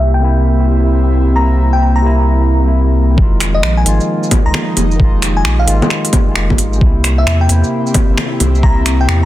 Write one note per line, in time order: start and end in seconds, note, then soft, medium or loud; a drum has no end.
0.00 3.16 C2 medium
0.00 0.19 C3 medium
0.00 3.19 G3 medium
0.00 0.21 A#3 medium
0.00 3.18 A#3 medium
0.00 3.89 C4 medium
0.00 0.23 E4 medium
0.00 3.18 E4 medium
0.00 3.18 G4 medium
0.00 3.19 G4 medium
0.00 0.11 E5 medium
0.14 0.38 G5 medium
0.20 0.65 C3 medium
0.20 0.66 A#3 medium
0.24 0.67 E4 loud
0.78 1.31 C3 medium
0.82 1.34 A#3 medium
0.87 1.36 E4 medium
1.32 2.00 C3 medium
1.32 2.02 A#3 medium
1.32 1.70 A#5 medium
1.40 2.04 E4 medium
1.73 1.93 G5 medium
1.96 2.58 A#5 medium
2.02 2.47 C3 medium
2.02 2.48 A#3 medium
2.06 2.49 E4 loud
2.60 3.14 C3 medium
2.60 3.16 A#3 medium
2.68 3.18 E4 medium
3.14 3.62 F1 loud
3.14 3.82 D#3 medium
3.14 6.82 F3 medium
3.14 3.84 G#3 medium
3.14 kick loud
3.22 3.86 F4 loud
3.40 9.25 A#3 medium
3.40 finger snap medium
3.40 open hi-hat medium
3.40 shaker medium
3.54 3.75 D#5 medium
3.63 3.85 A#1 medium
3.63 finger snap loud
3.77 4.01 G#5 medium
3.84 4.00 G#1 medium
3.84 4.29 D#3 loud
3.84 4.30 G#3 medium
3.84 open hi-hat medium
3.84 shaker medium
3.88 4.31 F4 loud
4.01 shaker soft
4.07 6.82 D#4 medium
4.23 shaker soft
4.31 kick loud
4.31 open hi-hat medium
4.31 low bongo medium
4.31 shaker medium
4.42 4.54 C2 loud
4.42 4.95 D#3 medium
4.42 4.70 A#5 medium
4.47 4.98 G#3 medium
4.47 5.00 F4 medium
4.54 finger snap loud
4.54 low bongo medium
4.76 5.44 F1 medium
4.76 9.25 G4 medium
4.76 open hi-hat medium
4.76 low bongo soft
4.76 shaker medium
4.91 shaker soft
4.96 5.64 D#3 medium
4.96 kick loud
5.00 5.66 G#3 medium
5.04 5.68 F4 loud
5.22 finger snap medium
5.22 open hi-hat medium
5.22 shaker medium
5.37 5.57 G#5 medium
5.45 5.67 A#1 medium
5.45 finger snap loud
5.59 5.90 F5 medium
5.65 5.81 G#1 medium
5.65 6.10 D#3 loud
5.65 6.11 G#3 medium
5.65 6.12 F4 loud
5.65 open hi-hat medium
5.65 shaker medium
5.82 low bongo medium
5.82 shaker soft
5.90 finger snap medium
6.05 open hi-hat soft
6.05 shaker soft
6.13 kick loud
6.13 open hi-hat medium
6.13 low bongo medium
6.13 shaker medium
6.23 6.77 D#3 medium
6.28 6.79 G#3 medium
6.28 6.81 F4 medium
6.36 6.57 F1 loud
6.36 finger snap loud
6.50 kick medium
6.50 low bongo medium
6.58 6.80 G#1 medium
6.58 open hi-hat medium
6.58 shaker medium
6.73 shaker soft
6.78 7.26 C2 loud
6.78 7.46 C3 medium
6.78 7.48 A#3 medium
6.78 kick loud
6.86 7.50 E4 loud
7.04 finger snap medium
7.04 open hi-hat medium
7.04 shaker medium
7.12 9.25 C4 medium
7.18 7.38 E5 medium
7.27 7.48 E2 medium
7.27 finger snap loud
7.41 7.65 G5 medium
7.47 7.63 E2 medium
7.47 7.92 C3 loud
7.47 7.93 A#3 medium
7.47 9.25 E4 medium
7.47 open hi-hat medium
7.47 shaker medium
7.52 7.94 E4 loud
7.64 shaker soft
7.87 shaker soft
7.94 kick loud
7.94 open hi-hat medium
7.94 low bongo medium
7.94 shaker medium
8.06 8.17 G1 loud
8.06 8.58 C3 medium
8.06 8.61 A#3 medium
8.13 8.63 E4 medium
8.18 finger snap loud
8.18 low bongo medium
8.40 9.08 C2 medium
8.40 open hi-hat medium
8.40 low bongo soft
8.40 shaker medium
8.55 9.25 C3 medium
8.55 shaker soft
8.63 9.25 A#3 medium
8.63 8.98 A#5 medium
8.63 kick loud
8.67 9.25 E4 loud
8.86 finger snap medium
8.86 open hi-hat medium
8.86 shaker medium
9.01 9.20 G5 medium
9.08 9.25 E2 medium
9.08 finger snap loud